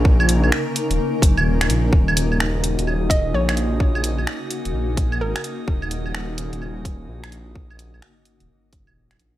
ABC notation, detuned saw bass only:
X:1
M:4/4
L:1/16
Q:"Swing 16ths" 1/4=128
K:Ebm
V:1 name="Detuned saw bass" clef=bass
B,,,4 z3 E,,, z2 G,,, E,,,3 B,,,2 | E,,,6- E,,, E,,,4- E,,, B,,,4- | B,,,4 z3 E,,, B,,,2 B,,,2 A,,, z3 | E,,,6- E,,, E,,,4- E,,, B,,,4- |
B,,,4 z3 E,,, z2 G,,, E,,,3 B,,,2 |]